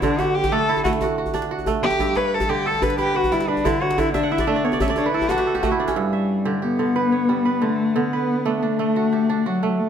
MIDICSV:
0, 0, Header, 1, 4, 480
1, 0, Start_track
1, 0, Tempo, 331492
1, 29, Time_signature, 12, 3, 24, 8
1, 14324, End_track
2, 0, Start_track
2, 0, Title_t, "Kora"
2, 0, Program_c, 0, 46
2, 0, Note_on_c, 0, 71, 61
2, 0, Note_on_c, 0, 73, 63
2, 45, Note_on_c, 0, 50, 90
2, 283, Note_on_c, 0, 67, 73
2, 752, Note_on_c, 0, 57, 83
2, 754, Note_on_c, 0, 62, 63
2, 841, Note_off_c, 0, 73, 0
2, 999, Note_on_c, 0, 64, 72
2, 1104, Note_off_c, 0, 71, 0
2, 1227, Note_off_c, 0, 57, 0
2, 1233, Note_on_c, 0, 57, 82
2, 1473, Note_on_c, 0, 66, 75
2, 1560, Note_off_c, 0, 67, 0
2, 1703, Note_off_c, 0, 66, 0
2, 1708, Note_on_c, 0, 66, 59
2, 1937, Note_off_c, 0, 62, 0
2, 1943, Note_on_c, 0, 62, 82
2, 2181, Note_off_c, 0, 66, 0
2, 2187, Note_on_c, 0, 66, 71
2, 2415, Note_off_c, 0, 57, 0
2, 2420, Note_on_c, 0, 57, 82
2, 2659, Note_on_c, 0, 67, 67
2, 2899, Note_on_c, 0, 43, 82
2, 2964, Note_off_c, 0, 50, 0
2, 2986, Note_off_c, 0, 66, 0
2, 3138, Note_on_c, 0, 73, 65
2, 3225, Note_off_c, 0, 62, 0
2, 3268, Note_off_c, 0, 64, 0
2, 3606, Note_off_c, 0, 67, 0
2, 3610, Note_on_c, 0, 50, 73
2, 3611, Note_on_c, 0, 67, 69
2, 3849, Note_on_c, 0, 69, 70
2, 4065, Note_off_c, 0, 50, 0
2, 4082, Note_on_c, 0, 50, 73
2, 4169, Note_off_c, 0, 73, 0
2, 4322, Note_on_c, 0, 71, 78
2, 4550, Note_off_c, 0, 71, 0
2, 4556, Note_on_c, 0, 71, 64
2, 4802, Note_on_c, 0, 55, 74
2, 5036, Note_off_c, 0, 71, 0
2, 5042, Note_on_c, 0, 71, 67
2, 5270, Note_off_c, 0, 50, 0
2, 5287, Note_on_c, 0, 50, 88
2, 5312, Note_off_c, 0, 57, 0
2, 5351, Note_off_c, 0, 55, 0
2, 5522, Note_on_c, 0, 73, 65
2, 5656, Note_off_c, 0, 67, 0
2, 5746, Note_off_c, 0, 50, 0
2, 5757, Note_off_c, 0, 69, 0
2, 5763, Note_on_c, 0, 50, 83
2, 5829, Note_off_c, 0, 43, 0
2, 6000, Note_on_c, 0, 76, 77
2, 6127, Note_on_c, 0, 78, 75
2, 6244, Note_off_c, 0, 76, 0
2, 6250, Note_on_c, 0, 76, 73
2, 6370, Note_on_c, 0, 74, 70
2, 6457, Note_off_c, 0, 73, 0
2, 6475, Note_off_c, 0, 76, 0
2, 6476, Note_on_c, 0, 57, 84
2, 6481, Note_on_c, 0, 76, 67
2, 6595, Note_off_c, 0, 74, 0
2, 6601, Note_on_c, 0, 74, 70
2, 6726, Note_on_c, 0, 73, 68
2, 6822, Note_off_c, 0, 71, 0
2, 6842, Note_off_c, 0, 74, 0
2, 6848, Note_on_c, 0, 74, 71
2, 6964, Note_off_c, 0, 57, 0
2, 6965, Note_off_c, 0, 76, 0
2, 6970, Note_on_c, 0, 57, 75
2, 6970, Note_on_c, 0, 76, 66
2, 7085, Note_off_c, 0, 74, 0
2, 7091, Note_on_c, 0, 74, 73
2, 7178, Note_off_c, 0, 73, 0
2, 7205, Note_on_c, 0, 73, 73
2, 7324, Note_on_c, 0, 71, 75
2, 7444, Note_on_c, 0, 69, 68
2, 7524, Note_off_c, 0, 78, 0
2, 7564, Note_on_c, 0, 67, 65
2, 7687, Note_on_c, 0, 62, 83
2, 7687, Note_on_c, 0, 66, 69
2, 7774, Note_off_c, 0, 73, 0
2, 7797, Note_off_c, 0, 67, 0
2, 7803, Note_on_c, 0, 67, 66
2, 7910, Note_off_c, 0, 69, 0
2, 7916, Note_on_c, 0, 69, 61
2, 8026, Note_off_c, 0, 67, 0
2, 8032, Note_on_c, 0, 67, 80
2, 8119, Note_off_c, 0, 66, 0
2, 8143, Note_off_c, 0, 57, 0
2, 8148, Note_on_c, 0, 57, 79
2, 8152, Note_on_c, 0, 66, 77
2, 8275, Note_on_c, 0, 64, 67
2, 8387, Note_off_c, 0, 62, 0
2, 8393, Note_on_c, 0, 62, 67
2, 8467, Note_off_c, 0, 76, 0
2, 8513, Note_on_c, 0, 61, 76
2, 8600, Note_off_c, 0, 74, 0
2, 8633, Note_on_c, 0, 43, 74
2, 8707, Note_off_c, 0, 50, 0
2, 8720, Note_off_c, 0, 66, 0
2, 8872, Note_on_c, 0, 76, 53
2, 9105, Note_off_c, 0, 71, 0
2, 9340, Note_off_c, 0, 67, 0
2, 9345, Note_on_c, 0, 50, 62
2, 9346, Note_on_c, 0, 67, 60
2, 9432, Note_off_c, 0, 61, 0
2, 9583, Note_off_c, 0, 67, 0
2, 9588, Note_on_c, 0, 67, 60
2, 9817, Note_off_c, 0, 50, 0
2, 9824, Note_off_c, 0, 69, 0
2, 9834, Note_on_c, 0, 50, 63
2, 10073, Note_on_c, 0, 71, 67
2, 10311, Note_on_c, 0, 73, 51
2, 10369, Note_off_c, 0, 76, 0
2, 10397, Note_off_c, 0, 62, 0
2, 10544, Note_off_c, 0, 64, 0
2, 10554, Note_on_c, 0, 55, 61
2, 10787, Note_off_c, 0, 71, 0
2, 10792, Note_on_c, 0, 71, 53
2, 11010, Note_off_c, 0, 50, 0
2, 11028, Note_on_c, 0, 50, 66
2, 11040, Note_off_c, 0, 57, 0
2, 11115, Note_off_c, 0, 73, 0
2, 11117, Note_off_c, 0, 55, 0
2, 11503, Note_off_c, 0, 50, 0
2, 11520, Note_on_c, 0, 50, 73
2, 11600, Note_off_c, 0, 43, 0
2, 11633, Note_off_c, 0, 67, 0
2, 11768, Note_off_c, 0, 71, 0
2, 11774, Note_on_c, 0, 71, 57
2, 12243, Note_on_c, 0, 57, 68
2, 12245, Note_on_c, 0, 62, 58
2, 12482, Note_off_c, 0, 62, 0
2, 12488, Note_on_c, 0, 62, 52
2, 12725, Note_off_c, 0, 57, 0
2, 12730, Note_on_c, 0, 57, 64
2, 12976, Note_on_c, 0, 66, 63
2, 13213, Note_on_c, 0, 67, 50
2, 13453, Note_off_c, 0, 62, 0
2, 13459, Note_on_c, 0, 62, 66
2, 13554, Note_off_c, 0, 71, 0
2, 13694, Note_off_c, 0, 66, 0
2, 13700, Note_on_c, 0, 66, 59
2, 13935, Note_off_c, 0, 57, 0
2, 13941, Note_on_c, 0, 57, 70
2, 14324, Note_off_c, 0, 50, 0
2, 14324, Note_off_c, 0, 57, 0
2, 14324, Note_off_c, 0, 62, 0
2, 14324, Note_off_c, 0, 66, 0
2, 14324, Note_off_c, 0, 67, 0
2, 14324, End_track
3, 0, Start_track
3, 0, Title_t, "Cello"
3, 0, Program_c, 1, 42
3, 43, Note_on_c, 1, 62, 90
3, 278, Note_on_c, 1, 66, 87
3, 300, Note_off_c, 1, 62, 0
3, 511, Note_on_c, 1, 67, 94
3, 532, Note_off_c, 1, 66, 0
3, 761, Note_on_c, 1, 69, 104
3, 782, Note_off_c, 1, 67, 0
3, 1207, Note_off_c, 1, 69, 0
3, 1216, Note_on_c, 1, 66, 73
3, 1324, Note_off_c, 1, 66, 0
3, 2649, Note_on_c, 1, 67, 105
3, 3133, Note_on_c, 1, 71, 93
3, 3154, Note_off_c, 1, 67, 0
3, 3389, Note_on_c, 1, 69, 89
3, 3411, Note_off_c, 1, 71, 0
3, 3615, Note_on_c, 1, 67, 97
3, 3637, Note_off_c, 1, 69, 0
3, 3857, Note_on_c, 1, 69, 93
3, 3879, Note_off_c, 1, 67, 0
3, 4092, Note_on_c, 1, 71, 87
3, 4114, Note_off_c, 1, 69, 0
3, 4327, Note_off_c, 1, 71, 0
3, 4335, Note_on_c, 1, 67, 98
3, 4572, Note_on_c, 1, 66, 97
3, 4593, Note_off_c, 1, 67, 0
3, 4807, Note_on_c, 1, 64, 88
3, 4829, Note_off_c, 1, 66, 0
3, 5045, Note_on_c, 1, 62, 80
3, 5066, Note_off_c, 1, 64, 0
3, 5280, Note_on_c, 1, 64, 89
3, 5302, Note_off_c, 1, 62, 0
3, 5529, Note_on_c, 1, 66, 83
3, 5550, Note_off_c, 1, 64, 0
3, 5772, Note_on_c, 1, 64, 96
3, 5794, Note_off_c, 1, 66, 0
3, 5990, Note_off_c, 1, 64, 0
3, 5999, Note_on_c, 1, 62, 86
3, 6249, Note_on_c, 1, 64, 83
3, 6271, Note_off_c, 1, 62, 0
3, 6477, Note_on_c, 1, 62, 93
3, 6498, Note_off_c, 1, 64, 0
3, 6724, Note_on_c, 1, 59, 85
3, 6745, Note_off_c, 1, 62, 0
3, 6957, Note_on_c, 1, 61, 76
3, 6979, Note_off_c, 1, 59, 0
3, 7195, Note_off_c, 1, 61, 0
3, 7203, Note_on_c, 1, 62, 82
3, 7422, Note_off_c, 1, 62, 0
3, 7444, Note_on_c, 1, 64, 87
3, 7685, Note_on_c, 1, 66, 87
3, 7707, Note_off_c, 1, 64, 0
3, 8159, Note_off_c, 1, 66, 0
3, 8635, Note_on_c, 1, 55, 65
3, 9540, Note_off_c, 1, 55, 0
3, 9603, Note_on_c, 1, 59, 85
3, 11040, Note_on_c, 1, 57, 84
3, 11062, Note_off_c, 1, 59, 0
3, 11515, Note_on_c, 1, 59, 85
3, 11537, Note_off_c, 1, 57, 0
3, 12386, Note_off_c, 1, 59, 0
3, 12403, Note_on_c, 1, 59, 53
3, 12503, Note_on_c, 1, 57, 88
3, 12524, Note_off_c, 1, 59, 0
3, 13703, Note_on_c, 1, 54, 78
3, 13725, Note_off_c, 1, 57, 0
3, 14183, Note_on_c, 1, 57, 71
3, 14204, Note_off_c, 1, 54, 0
3, 14324, Note_off_c, 1, 57, 0
3, 14324, End_track
4, 0, Start_track
4, 0, Title_t, "Djembe"
4, 28, Note_on_c, 9, 64, 66
4, 172, Note_off_c, 9, 64, 0
4, 270, Note_on_c, 9, 63, 69
4, 414, Note_off_c, 9, 63, 0
4, 634, Note_on_c, 9, 62, 53
4, 634, Note_on_c, 9, 63, 52
4, 634, Note_on_c, 9, 64, 52
4, 778, Note_off_c, 9, 62, 0
4, 778, Note_off_c, 9, 63, 0
4, 778, Note_off_c, 9, 64, 0
4, 1106, Note_on_c, 9, 63, 52
4, 1225, Note_on_c, 9, 64, 74
4, 1250, Note_off_c, 9, 63, 0
4, 1345, Note_on_c, 9, 62, 47
4, 1369, Note_off_c, 9, 64, 0
4, 1459, Note_on_c, 9, 63, 69
4, 1489, Note_off_c, 9, 62, 0
4, 1603, Note_off_c, 9, 63, 0
4, 1821, Note_on_c, 9, 64, 47
4, 1935, Note_on_c, 9, 63, 70
4, 1966, Note_off_c, 9, 64, 0
4, 2057, Note_on_c, 9, 62, 51
4, 2080, Note_off_c, 9, 63, 0
4, 2202, Note_off_c, 9, 62, 0
4, 2294, Note_on_c, 9, 63, 48
4, 2408, Note_on_c, 9, 64, 65
4, 2439, Note_off_c, 9, 63, 0
4, 2553, Note_off_c, 9, 64, 0
4, 2760, Note_on_c, 9, 62, 50
4, 2760, Note_on_c, 9, 63, 52
4, 2890, Note_on_c, 9, 64, 54
4, 2905, Note_off_c, 9, 62, 0
4, 2905, Note_off_c, 9, 63, 0
4, 3035, Note_off_c, 9, 64, 0
4, 3117, Note_on_c, 9, 63, 64
4, 3262, Note_off_c, 9, 63, 0
4, 3479, Note_on_c, 9, 62, 53
4, 3479, Note_on_c, 9, 63, 54
4, 3479, Note_on_c, 9, 64, 55
4, 3624, Note_off_c, 9, 62, 0
4, 3624, Note_off_c, 9, 63, 0
4, 3624, Note_off_c, 9, 64, 0
4, 3962, Note_on_c, 9, 63, 50
4, 4085, Note_on_c, 9, 64, 82
4, 4106, Note_off_c, 9, 63, 0
4, 4199, Note_on_c, 9, 62, 53
4, 4229, Note_off_c, 9, 64, 0
4, 4315, Note_on_c, 9, 63, 68
4, 4344, Note_off_c, 9, 62, 0
4, 4460, Note_off_c, 9, 63, 0
4, 4688, Note_on_c, 9, 64, 59
4, 4808, Note_on_c, 9, 63, 77
4, 4833, Note_off_c, 9, 64, 0
4, 4929, Note_on_c, 9, 62, 61
4, 4953, Note_off_c, 9, 63, 0
4, 5074, Note_off_c, 9, 62, 0
4, 5167, Note_on_c, 9, 63, 60
4, 5289, Note_on_c, 9, 64, 77
4, 5312, Note_off_c, 9, 63, 0
4, 5434, Note_off_c, 9, 64, 0
4, 5655, Note_on_c, 9, 62, 66
4, 5763, Note_on_c, 9, 64, 69
4, 5800, Note_off_c, 9, 62, 0
4, 5908, Note_off_c, 9, 64, 0
4, 5996, Note_on_c, 9, 62, 28
4, 5996, Note_on_c, 9, 63, 79
4, 6110, Note_off_c, 9, 62, 0
4, 6110, Note_on_c, 9, 62, 23
4, 6141, Note_off_c, 9, 63, 0
4, 6222, Note_off_c, 9, 62, 0
4, 6222, Note_on_c, 9, 62, 27
4, 6347, Note_off_c, 9, 62, 0
4, 6347, Note_on_c, 9, 62, 61
4, 6347, Note_on_c, 9, 63, 56
4, 6347, Note_on_c, 9, 64, 53
4, 6492, Note_off_c, 9, 62, 0
4, 6492, Note_off_c, 9, 63, 0
4, 6492, Note_off_c, 9, 64, 0
4, 6834, Note_on_c, 9, 63, 59
4, 6952, Note_on_c, 9, 64, 80
4, 6979, Note_off_c, 9, 63, 0
4, 7064, Note_on_c, 9, 62, 57
4, 7097, Note_off_c, 9, 64, 0
4, 7179, Note_on_c, 9, 63, 74
4, 7209, Note_off_c, 9, 62, 0
4, 7324, Note_off_c, 9, 63, 0
4, 7544, Note_on_c, 9, 64, 54
4, 7658, Note_on_c, 9, 62, 24
4, 7658, Note_on_c, 9, 63, 76
4, 7689, Note_off_c, 9, 64, 0
4, 7786, Note_off_c, 9, 62, 0
4, 7786, Note_on_c, 9, 62, 58
4, 7803, Note_off_c, 9, 63, 0
4, 7931, Note_off_c, 9, 62, 0
4, 8035, Note_on_c, 9, 62, 20
4, 8035, Note_on_c, 9, 63, 56
4, 8152, Note_off_c, 9, 62, 0
4, 8152, Note_on_c, 9, 62, 22
4, 8152, Note_on_c, 9, 64, 72
4, 8179, Note_off_c, 9, 63, 0
4, 8296, Note_off_c, 9, 62, 0
4, 8296, Note_off_c, 9, 64, 0
4, 8393, Note_on_c, 9, 62, 22
4, 8510, Note_off_c, 9, 62, 0
4, 8510, Note_on_c, 9, 62, 55
4, 8510, Note_on_c, 9, 63, 54
4, 8654, Note_off_c, 9, 62, 0
4, 8654, Note_off_c, 9, 63, 0
4, 14324, End_track
0, 0, End_of_file